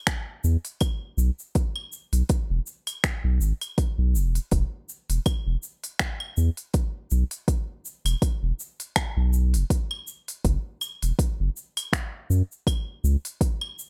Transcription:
0.07 finger snap, kick, open hi-hat, shaker
0.44 E2, shaker
0.65 open hi-hat, shaker
0.81 kick, open hi-hat, claves, shaker
1.17 B1, shaker
1.39 shaker
1.55 kick, open hi-hat, shaker
1.76 claves
1.92 shaker
2.13 B1, open hi-hat, shaker
2.29 kick, open hi-hat, shaker
2.50 E1
2.67 shaker
2.87 open hi-hat, claves, shaker
3.04 finger snap, kick, open hi-hat, shaker
3.24 B1
3.40 G#1, shaker
3.61 open hi-hat, claves, shaker
3.78 kick, open hi-hat
3.98 B1
4.15 E1, shaker
4.35 open hi-hat, shaker
4.51 E1, kick, open hi-hat, shaker
4.89 shaker
5.10 E1, open hi-hat, shaker
5.26 kick, open hi-hat, claves, shaker
5.47 E1
5.63 shaker
5.84 open hi-hat, shaker
5.99 finger snap, kick, open hi-hat, shaker
6.20 claves
6.37 E2, shaker
6.57 open hi-hat, shaker
6.74 kick, open hi-hat, shaker
7.11 B1, shaker
7.31 open hi-hat, shaker
7.48 kick, open hi-hat, shaker
7.85 shaker
8.05 E1, open hi-hat, claves, shaker
8.22 kick, open hi-hat, shaker
8.43 E1
8.60 shaker
8.80 open hi-hat, shaker
8.96 finger snap, kick, open hi-hat, claves, shaker
9.17 B1
9.33 shaker
9.54 E1, open hi-hat, shaker
9.70 kick, open hi-hat, shaker
9.91 claves
10.07 shaker
10.28 open hi-hat, shaker
10.45 F#1, kick, open hi-hat, shaker
10.81 claves, shaker
11.02 E1, open hi-hat, shaker
11.19 kick, open hi-hat, shaker
11.40 F#1
11.57 shaker
11.77 open hi-hat, claves, shaker
11.93 finger snap, kick, open hi-hat, shaker
12.30 F#2, shaker
12.52 shaker
12.67 kick, open hi-hat, claves, shaker
13.04 C#2, shaker
13.25 open hi-hat, shaker
13.41 kick, open hi-hat, shaker
13.61 claves
13.79 shaker

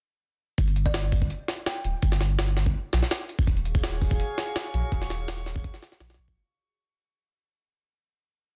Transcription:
0.58 G1, kick, closed hi-hat
0.68 closed hi-hat
0.76 closed hi-hat
0.86 D5, kick
0.94 snare, closed hi-hat
1.12 kick, open hi-hat
1.22 kick
1.30 closed hi-hat
1.48 snare, closed hi-hat
1.66 G5, snare, closed hi-hat
1.84 D1, closed hi-hat
2.02 G1, kick, closed hi-hat
2.12 snare
2.21 snare, closed hi-hat
2.39 snare, closed hi-hat
2.48 closed hi-hat
2.57 snare, closed hi-hat
2.66 kick
2.93 A#1, snare, closed hi-hat
3.03 snare
3.11 snare, closed hi-hat
3.29 closed hi-hat
3.39 kick
3.47 D#1 F#4 G#4 C#5 F5 C#6, kick, closed hi-hat
3.57 closed hi-hat
3.65 closed hi-hat
3.75 kick
3.83 snare, closed hi-hat
4.02 kick, open hi-hat
4.11 kick
4.20 closed hi-hat
4.38 snare, closed hi-hat
4.56 snare, closed hi-hat
4.74 A#1, closed hi-hat
4.92 D#1, kick, closed hi-hat
5.02 snare
5.10 snare, closed hi-hat
5.28 snare, closed hi-hat
5.38 closed hi-hat
5.46 snare, closed hi-hat
5.56 kick
5.64 kick, closed hi-hat
5.74 snare
5.83 snare, closed hi-hat
5.92 snare
6.00 A#1, snare, closed hi-hat
6.10 snare, closed hi-hat
6.14 A#1, snare, closed hi-hat
6.19 closed hi-hat
6.28 kick

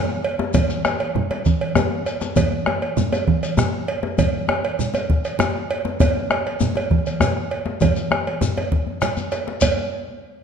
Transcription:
0.09 bombo rim
0.24 cowbell
0.39 djembe slap, djembe tone
0.54 bombo rim, bombo low, cowbell, high conga, djembe bass, low conga, shekere
0.70 bombo rim, shekere
0.85 bombo rim, cowbell, djembe tone, high conga, shekere
1.00 cowbell
1.15 djembe slap, djembe bass, low conga
1.31 bombo rim, cowbell, djembe slap, djembe tone
1.45 bombo low, djembe slap, high conga, shekere
1.61 cowbell, djembe slap
1.75 bombo rim, cowbell, djembe tone, djembe bass, low conga, shekere
1.91 bombo rim, djembe slap
2.06 bombo rim, cowbell, shekere
2.21 bombo rim, djembe slap, djembe tone, high conga, shekere
2.36 bombo low, cowbell, high conga, djembe bass, low conga, shekere
2.66 bombo rim, cowbell, djembe tone
2.82 cowbell, djembe slap
2.97 low conga, djembe bass, shekere
3.12 cowbell, djembe slap, djembe tone, shekere
3.28 bombo low, high conga
3.43 cowbell, high conga, shekere
3.57 bombo rim, djembe tone, djembe bass, low conga, shekere
3.73 bombo rim
3.88 cowbell
4.03 djembe slap, djembe tone
4.18 bombo low, cowbell, high conga, djembe bass, low conga, shekere
4.48 bombo rim, cowbell, djembe tone
4.63 cowbell, djembe slap
4.79 low conga, shekere
4.94 cowbell, djembe slap, djembe tone, shekere
5.10 bombo low, high conga
5.25 cowbell, high conga, shekere
5.39 bombo rim, cowbell, djembe tone, low conga, djembe bass, shekere
5.55 bombo rim
5.71 cowbell
5.85 djembe slap, djembe tone
6.00 bombo low, cowbell, high conga, djembe bass, low conga, shekere
6.30 bombo rim, cowbell, djembe tone
6.45 cowbell, djembe slap
6.60 djembe bass, low conga, shekere
6.75 cowbell, djembe slap, djembe tone
6.91 bombo low, high conga
7.06 cowbell, high conga, shekere
7.20 bombo rim, cowbell, djembe tone, djembe bass, low conga, shekere
7.37 bombo rim
7.51 cowbell
7.66 djembe slap, djembe tone
7.81 bombo low, cowbell, djembe slap, high conga, djembe bass, low conga, shekere
7.96 shekere
8.11 bombo rim, cowbell, djembe tone, high conga
8.27 cowbell, high conga
8.41 djembe slap, high conga, djembe bass, low conga, shekere
8.57 cowbell, djembe slap, djembe tone, high conga
8.72 bombo low, high conga
8.87 djembe bass
9.02 bombo rim, cowbell, low conga, djembe bass, shekere
9.17 high conga, djembe bass, shekere
9.32 cowbell, djembe slap, shekere
9.47 bombo rim, djembe slap, high conga
9.61 bombo low, cowbell, low conga, djembe bass, shekere

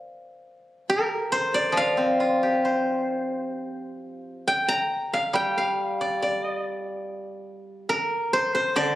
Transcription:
0.90 A#4
1.32 C5
1.54 D5
1.72 F3
1.77 F5
1.97 C4
2.20 F4
2.43 G4
2.65 C5
4.48 G5
4.68 A#5
5.13 F5
5.33 G3 G5
5.58 F5
6.01 D5
6.22 D5
7.89 A#4
8.33 C5
8.55 C5
8.76 D3 D5

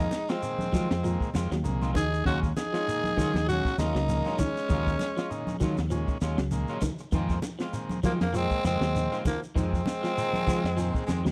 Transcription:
Already playing: G#3 D#4
0.11 muted clean electric guitar stroke, snare, closed hi-hat, high conga, shekere
0.29 F3 G#3 C4 F4, snare, shekere
0.42 A#2 D#3 G#3 C4, muted clean electric guitar stroke, closed hi-hat, shekere
0.59 muted clean electric guitar stroke, closed hi-hat, high conga, shekere
0.72 D#3 F3 F#3 G#3 C4 F4, kick, open hi-hat, low conga, shekere
0.90 F2, muted clean electric guitar stroke, snare, closed hi-hat, shekere
1.03 A#2 D#3 F3 G#3 A#3, closed hi-hat, high conga, shekere
1.20 muted clean electric guitar stroke, kick, closed hi-hat, shekere
1.34 F2 D#3 G#3 C4 F4, snare, closed hi-hat, low conga, shekere
1.51 D#2 F#3, muted clean electric guitar stroke, snare, closed hi-hat, shekere
1.63 C2 A#2 D#3 G#3 A#3, closed hi-hat, high conga, shekere
1.81 D#3 G#3 C4 F4, snare, high conga, shekere
1.94 D#2 D#3 D#4 G#4, muted clean electric guitar stroke, kick, closed hi-hat, high conga, low conga, shekere
2.12 muted clean electric guitar stroke, shekere
2.25 D#2 A#2 C#3 D#3 F#3 G#3 C#4 F4 F#4, kick, closed hi-hat, high conga, shekere
2.43 kick, closed hi-hat, high conga, shekere
2.57 D#4 G#4, muted clean electric guitar stroke, snare, high conga, shekere
2.73 F3 G#3 C#4 F4, snare, shekere
2.87 A#2 D#3 G#3 A#3, muted clean electric guitar stroke, closed hi-hat, shekere
3.04 muted clean electric guitar stroke, snare, high conga, shekere
3.17 D#3 F#3 G#3 C#4 F4, kick, open hi-hat, low conga, shekere
3.34 D#2, muted clean electric guitar stroke, snare, closed hi-hat, high conga, shekere
3.47 A#2 D#3 F#3 G#3 C#4 F#4, snare, closed hi-hat, high conga, shekere
3.65 muted clean electric guitar stroke, kick, snare, closed hi-hat, shekere
3.78 D#2 F#3 G#3 A#3 C#4 D#4 F4, snare, low conga, shekere
3.95 C#2 F#3, muted clean electric guitar stroke, snare, shekere
4.09 A#2 D#3 G#3 A#3, snare, high conga, shekere
4.25 F#3 G#3 C#4 F4, snare, closed hi-hat, high conga, shekere
4.38 D#3 G#3 C#4, muted clean electric guitar stroke, kick, closed hi-hat, high conga, low conga, shekere
4.57 muted clean electric guitar stroke, snare, shekere
4.69 D#2 A#2 C#3 D#3 F#3 G#3 A#3 C#4 F4, kick, closed hi-hat, high conga, low conga, shekere
4.86 kick, high conga, shekere
4.99 muted clean electric guitar stroke, snare, high conga, shekere
5.17 F3 G#3 C#4 F4, snare, shekere
5.30 A#2 D#3 G#3 D#4, muted clean electric guitar stroke, closed hi-hat, shekere
5.47 muted clean electric guitar stroke, snare, high conga, shekere
5.60 D#3 F#3 G#3 C#4 F4, kick, open hi-hat, low conga, shekere
5.77 D#2, muted clean electric guitar stroke, snare, closed hi-hat, high conga, shekere
5.90 A#2 D#3 F3 G#3 C#4, closed hi-hat, shekere
6.08 muted clean electric guitar stroke, kick, closed hi-hat, shekere
6.21 D#2 F#3 G#3 C#4 F4, snare, closed hi-hat, shekere
6.37 C#2 F#3, muted clean electric guitar stroke, snare, closed hi-hat, shekere
6.51 A#2 D#3 G#3 A#3, closed hi-hat, high conga, shekere
6.68 F#3 G#3 C#4 F4, snare, closed hi-hat, shekere
6.81 D#3, muted clean electric guitar stroke, kick, closed hi-hat, high conga, low conga, shekere
6.98 muted clean electric guitar stroke, closed hi-hat, shekere
7.12 F2 A#2 D#3 G#3 C4 F4, kick, closed hi-hat, high conga, shekere
7.29 kick, snare, closed hi-hat, high conga, shekere
7.42 muted clean electric guitar stroke, snare, closed hi-hat, high conga, shekere
7.59 F3 G#3 C4 F4, snare, closed hi-hat, shekere
7.73 A#2 D#3 G#3 C4, muted clean electric guitar stroke, closed hi-hat, shekere
7.89 muted clean electric guitar stroke, closed hi-hat, high conga, shekere
8.03 D#3 F3 F#3 G#3 A#3 C4 F4, kick, open hi-hat, low conga, shekere
8.20 F2 F3 A#3, muted clean electric guitar stroke, snare, closed hi-hat, high conga, shekere
8.33 A#2 D#3 F3 G#3 A#3 C4, closed hi-hat, high conga, shekere
8.51 muted clean electric guitar stroke, kick, shekere
8.64 F2 D#3 G#3 C4 F4, snare, closed hi-hat, low conga, shekere
8.80 D#2 F#3, muted clean electric guitar stroke, snare, shekere
8.95 A#2 D#3 G#3 C4, closed hi-hat, high conga, shekere
9.12 D#3 G#3 C4 F4, snare, closed hi-hat, shekere
9.25 D#3 F3 A#3, muted clean electric guitar stroke, kick, closed hi-hat, high conga, low conga, shekere
9.42 muted clean electric guitar stroke, closed hi-hat, shekere
9.55 F2 A#2 D#3 G#3 C4, muted clean electric guitar stroke, kick, closed hi-hat, shekere
9.73 kick, closed hi-hat, high conga, shekere
9.85 muted clean electric guitar stroke, snare, high conga, shekere
10.01 F3 G#3 C4 F4, snare, shekere
10.15 A#2 D#3 F3 G#3 C4, muted clean electric guitar stroke, closed hi-hat, shekere
10.33 muted clean electric guitar stroke, snare, high conga, shekere
10.46 D#3 F3 G#3 C4 F4, kick, open hi-hat, low conga, shekere
10.64 F2, muted clean electric guitar stroke, snare, closed hi-hat, shekere
10.77 A#2 D#3 F3 G#3 C4, snare, closed hi-hat, high conga, shekere
10.94 muted clean electric guitar stroke, kick, closed hi-hat, shekere
11.07 F2 D#3 G#3 C4, muted clean electric guitar stroke, snare, closed hi-hat, low conga, shekere
11.25 D#2 F#3, muted clean electric guitar stroke, snare, shekere

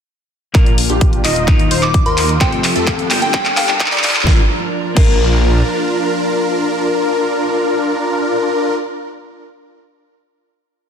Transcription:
0.54 A#1 A#2 D3 A#3 D4 F4 A#4, kick, clap, closed hi-hat, riser
0.66 closed hi-hat
0.78 open hi-hat
0.90 A#1 D4 F4 G4, closed hi-hat
1.01 kick, closed hi-hat
1.13 closed hi-hat
1.24 D#1 D#4 F4 D#5, clap, open hi-hat
1.36 closed hi-hat
1.47 D#3 A#3 D#4 F4 A#4, kick, clap, closed hi-hat
1.59 closed hi-hat
1.71 D#1 D#4 F4 C5, open hi-hat
1.83 D6, clap, closed hi-hat
1.94 kick, closed hi-hat
2.06 D#2 D#4 F4 A#4 C6, closed hi-hat
2.18 clap, open hi-hat
2.29 closed hi-hat
2.40 F1 F3 A3 C4 F4 G4 A4 C5 G5, kick, clap, closed hi-hat
2.52 closed hi-hat
2.64 clap, open hi-hat
2.76 F2 A3 C4 F4 G4 A4, closed hi-hat
2.87 kick, clap, closed hi-hat
2.99 closed hi-hat
3.10 G1 A#3 D4 G4 A4 G5, clap, open hi-hat
3.22 G5, closed hi-hat
3.33 G2 G3 A#3 D4 G4 A4 G5, kick, clap, closed hi-hat
3.45 clap, closed hi-hat
3.57 G1 A#3 D4 G4 A4 F5 G5, clap, open hi-hat
3.69 G5, clap, closed hi-hat
3.80 kick, clap, closed hi-hat
3.86 clap
3.92 G2 A#3 D4 G4 A4 D5, clap, closed hi-hat
3.98 clap
4.04 clap, open hi-hat
4.09 clap
4.15 clap, closed hi-hat
4.21 clap
4.25 A#1 F3 A#3 D4 F4 A#4, kick, snare
4.95 A#1 A#3 D4 F4 A#4, kick, crash

